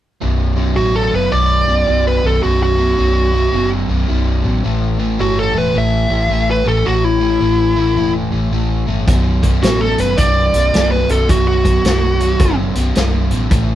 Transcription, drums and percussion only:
9.08 kick, closed hi-hat
9.43 kick, closed hi-hat
9.63 snare, closed hi-hat
9.98 closed hi-hat
10.17 kick, closed hi-hat
10.54 closed hi-hat
10.74 snare, closed hi-hat
11.09 closed hi-hat
11.29 kick, closed hi-hat
11.65 kick, closed hi-hat
11.85 snare, closed hi-hat
12.20 closed hi-hat
12.39 kick, closed hi-hat
12.75 closed hi-hat
12.95 snare, closed hi-hat
13.31 closed hi-hat
13.51 kick, closed hi-hat

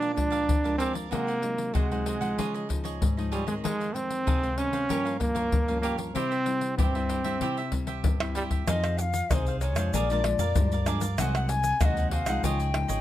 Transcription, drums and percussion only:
0.02 pandeiro
0.17 pandeiro, surdo
0.32 pandeiro
0.49 pandeiro, surdo
0.65 pandeiro
0.80 pandeiro
0.95 pandeiro
1.12 pandeiro, surdo
1.28 pandeiro
1.43 pandeiro
1.58 pandeiro
1.75 pandeiro, surdo
1.92 pandeiro
2.06 pandeiro
2.22 pandeiro
2.39 pandeiro, surdo
2.55 pandeiro
2.70 pandeiro, surdo
2.85 pandeiro
3.02 pandeiro, surdo
3.18 pandeiro
3.32 pandeiro
3.48 pandeiro
3.65 pandeiro, surdo
3.81 pandeiro
3.96 pandeiro
4.10 pandeiro
4.27 pandeiro, surdo
4.43 pandeiro
4.58 pandeiro
4.73 pandeiro
4.90 pandeiro, surdo
5.06 pandeiro
5.21 pandeiro, surdo
5.36 pandeiro
5.52 pandeiro, surdo
5.68 pandeiro
5.83 pandeiro
5.98 pandeiro
6.15 pandeiro, surdo
6.32 pandeiro
6.46 pandeiro
6.61 pandeiro
6.78 pandeiro, surdo
6.95 pandeiro
7.09 pandeiro
7.24 pandeiro
7.41 pandeiro, surdo
7.57 pandeiro
7.72 pandeiro, surdo
7.87 pandeiro
8.04 pandeiro, surdo
8.20 pandeiro, tamborim
8.35 pandeiro
8.51 pandeiro, surdo
8.68 pandeiro, tamborim, shaker, surdo
8.84 pandeiro, tamborim, shaker
8.99 pandeiro, shaker
9.14 pandeiro, shaker
9.31 pandeiro, tamborim, shaker, surdo
9.46 pandeiro, shaker
9.61 pandeiro, shaker
9.76 pandeiro, tamborim, shaker
9.94 pandeiro, shaker, surdo
10.10 pandeiro, shaker
10.24 pandeiro, tamborim
10.39 pandeiro, shaker
10.55 pandeiro, shaker, surdo
10.72 pandeiro, shaker
10.86 pandeiro, tamborim, shaker
11.01 pandeiro, shaker
11.18 pandeiro, tamborim, shaker, surdo
11.35 pandeiro, tamborim, shaker
11.49 pandeiro, shaker
11.64 pandeiro, shaker
11.81 pandeiro, tamborim, shaker, surdo
11.97 pandeiro, shaker
12.11 pandeiro
12.26 pandeiro, tamborim, shaker
12.44 pandeiro, shaker, surdo
12.60 pandeiro, shaker
12.74 pandeiro, tamborim
12.89 pandeiro, shaker

